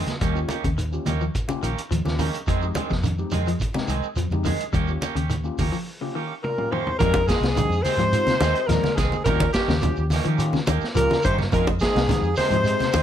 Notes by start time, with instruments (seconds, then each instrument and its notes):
Already playing: clean electric guitar D#3 G#3 C4 G#4
0.07 snare, closed hi-hat, high conga, shekere
0.21 fingered electric bass D#2, clean electric guitar D#3 G3 A#3 C#4 G4, kick, closed hi-hat, shekere
0.34 tine electric piano A#3 C#4 F4 G4, shekere
0.49 clean electric guitar D#3 A#3 C#4 G4, closed hi-hat, high conga, shekere
0.64 fingered electric bass D#2, clean electric guitar C#3, kick, closed hi-hat, shekere
0.78 clean electric guitar D#3, closed hi-hat, shekere
0.92 tine electric piano A#3 C#4 F4 G4, shekere
1.06 fingered electric bass D#2, clean electric guitar D#3 A#3 C#4 G4, closed hi-hat, high conga, low conga, shekere
1.20 clean electric guitar F3, shekere
1.35 kick, closed hi-hat, shekere
1.48 clean electric guitar C#3, tine electric piano A#3 C#4 F4 G4, high conga, shekere
1.63 fingered electric bass A#1, clean electric guitar D#3 A#3 C#4 G4, muted clean electric guitar stroke, closed hi-hat, shekere
1.78 closed hi-hat, shekere
1.91 fingered electric bass D#2, clean electric guitar F3, closed hi-hat, shekere
2.05 fingered electric bass D#2, tine electric piano A#3 C#4 F4 G4, snare, high conga, shekere
2.19 clean electric guitar D#3 A#3 C#4 G4, open hi-hat, high conga, low conga, shekere
2.33 closed hi-hat, shekere
2.47 fingered electric bass F2, clean electric guitar D#3 F3 G#3 C4 G#4, kick, closed hi-hat, shekere
2.62 tine electric piano G#3 C4 D#4 G4, shekere
2.75 clean electric guitar D#3 G#3 C4 G#4, closed hi-hat, high conga, low conga, shekere
2.90 fingered electric bass F2, clean electric guitar C3, kick, snare, shekere
3.03 clean electric guitar D#3, closed hi-hat, low conga, shekere
3.18 tine electric piano G#3 C4 D#4 G4, shekere
3.31 fingered electric bass F2, clean electric guitar D#3 G#3 C4 G#4, closed hi-hat, high conga, low conga, shekere
3.46 clean electric guitar F3, closed hi-hat, shekere
3.60 kick, closed hi-hat, shekere
3.74 clean electric guitar C3, tine electric piano G#3 C4 D#4 G4, snare, high conga, shekere
3.88 fingered electric bass C2, clean electric guitar D#3 G#3 C4 G#4, closed hi-hat, shekere
4.03 shekere
4.16 fingered electric bass F2, clean electric guitar F3, closed hi-hat, shekere
4.30 fingered electric bass F2, tine electric piano G#3 C4 D#4 G4, high conga, shekere
4.45 clean electric guitar D#3 G#3 G#4, open hi-hat, high conga, low conga, shekere
4.60 closed hi-hat, shekere
4.73 fingered electric bass D#2, clean electric guitar G3 A#3 C#4 G4, kick, closed hi-hat, shekere
4.88 tine electric piano A#3 C#4 F4 G4, shekere
5.01 clean electric guitar A#3 C#4 G4, closed hi-hat, high conga, shekere
5.15 fingered electric bass D#2, clean electric guitar C#3 C#4 G4, closed hi-hat, shekere
5.30 clean electric guitar D#3, closed hi-hat, high conga, shekere
5.44 tine electric piano A#3 C#4 F4 G4, shekere
5.58 fingered electric bass D#2, clean electric guitar A#3 C#4 G4, kick, open hi-hat, high conga, low conga, shekere
5.72 clean electric guitar F3, shekere
6.01 clean electric guitar C#3, tine electric piano A#3 C#4 F4 G4
6.15 clean electric guitar D#3 A#3 C#4 G4
6.43 trombone section A#2, alto saxophone A#4, trumpet A#4, muted clean electric guitar stroke, high tom
6.58 tine electric piano A#3 C#4 F4 G4, mid tom
6.71 trombone section C3, clean electric guitar D#3 A#3 C#4 G4, trumpet C5, alto saxophone C5, mid tom
6.87 floor tom
6.98 fingered electric bass F2, trombone section A#2, clean electric guitar D#3 F3 G#3 C4 G#4, tine electric piano G#3 C4 D#4 G4, trumpet A#4, alto saxophone A#4, kick, closed hi-hat, low conga, shekere
7.14 kick, closed hi-hat, high conga, shekere
7.24 trombone section G#2, trumpet G#4
7.28 clean electric guitar D#3 G#3 C4 G#4, alto saxophone G#4, kick, snare, closed hi-hat, shekere
7.41 fingered electric bass C2, clean electric guitar C3, snare, closed hi-hat, shekere
7.55 clean electric guitar D#3, tine electric piano G#3 C4 D#4 G4, closed hi-hat, high conga, low conga, shekere
7.69 fingered electric bass F2, shekere
7.82 trombone section C3, clean electric guitar D#3 G#3 C4 G#4, trumpet C5, alto saxophone C5, open hi-hat, high conga, shekere
7.97 fingered electric bass G#2, clean electric guitar F3, closed hi-hat, low conga, shekere
8.12 tine electric piano G#3 C4 D#4 F4, closed hi-hat, shekere
8.27 clean electric guitar C3, snare, closed hi-hat, high conga, shekere
8.41 fingered electric bass D#2, clean electric guitar D#3 G#3 C4 G#4, snare, closed hi-hat, high conga, shekere
8.55 closed hi-hat, shekere
8.66 fingered electric bass D#2, trombone section A#2, clean electric guitar F3, tine electric piano G#3 C4 D#4 A#4, trumpet A#4, alto saxophone A#4, snare, closed hi-hat
8.70 shekere
8.84 snare, high conga, shekere
8.96 fingered electric bass C2, trombone section G#2, clean electric guitar D#3 C4 G#4, alto saxophone G#4, trumpet G#4, kick, snare, closed hi-hat, shekere
9.12 high conga, shekere
9.24 fingered electric bass D#2, trombone section A#2, clean electric guitar D#3 A#3 C#4 G4, tine electric piano A#3 C#4 F4 G4, alto saxophone A#4, trumpet A#4, muted clean electric guitar stroke, kick, closed hi-hat, low conga, shekere
9.40 kick, closed hi-hat, high conga, shekere
9.53 trombone section G2, clean electric guitar D#3 A#3 C#4 G4, trumpet G4, alto saxophone G4, kick, snare, closed hi-hat, shekere
9.68 fingered electric bass D#2, clean electric guitar C#3, snare, shekere
9.81 tine electric piano A#3 C#4 F4 G4, closed hi-hat, high conga, low conga, shekere
9.96 fingered electric bass D#2, shekere
10.10 clean electric guitar D#3 A#3 C#4 G4, snare, open hi-hat, high conga, shekere
10.25 fingered electric bass D#3, clean electric guitar F3 A#3 C#4 G4, closed hi-hat, shekere
10.37 tine electric piano A#3 C#4 F4 G4, closed hi-hat, shekere
10.53 clean electric guitar C#3, snare, high conga, shekere
10.66 fingered electric bass D#2, clean electric guitar D#3 A#3 G4, muted clean electric guitar stroke, closed hi-hat, high conga, shekere
10.81 muted fingered electric bass stroke, snare, shekere
10.94 fingered electric bass C#2, trombone section A#2, clean electric guitar F3, tine electric piano A#3 C#4 F4 G4, alto saxophone A#4, trumpet A#4, closed hi-hat, shekere
11.09 snare, high conga, shekere
11.23 fingered electric bass G2, trombone section C3, clean electric guitar D#3 A#3 C#4 G4, alto saxophone C5, kick, closed hi-hat, shekere
11.27 trumpet C5
11.38 snare, high conga, shekere
11.52 fingered electric bass F2, trombone section A#2, clean electric guitar D#3 F3 G#3 C4 G#4, tine electric piano G#3 C4 D#4 G4, alto saxophone A#4, trumpet A#4, kick, closed hi-hat, low conga, shekere
11.67 kick, closed hi-hat, high conga, shekere
11.80 trombone section G#2, clean electric guitar D#3 G#3 C4, alto saxophone G#4, trumpet G#4, kick, snare, closed hi-hat, shekere
11.95 fingered electric bass C2, clean electric guitar C3, snare, closed hi-hat, shekere
12.08 clean electric guitar D#3, tine electric piano G#3 C4 D#4 G4, snare, closed hi-hat, high conga, low conga, shekere
12.22 fingered electric bass F2, shekere
12.36 trombone section C3, clean electric guitar D#3 G#3 C4 G#4, alto saxophone C5, trumpet C5, snare, open hi-hat, high conga, shekere
12.50 fingered electric bass G#2, clean electric guitar F3, closed hi-hat, low conga, shekere
12.64 tine electric piano G#3 C4 D#4 G#4, closed hi-hat, shekere
12.79 clean electric guitar C3, snare, closed hi-hat, high conga, shekere
12.93 fingered electric bass D#2, clean electric guitar D#3 G#3 C4 G#4, closed hi-hat, high conga, shekere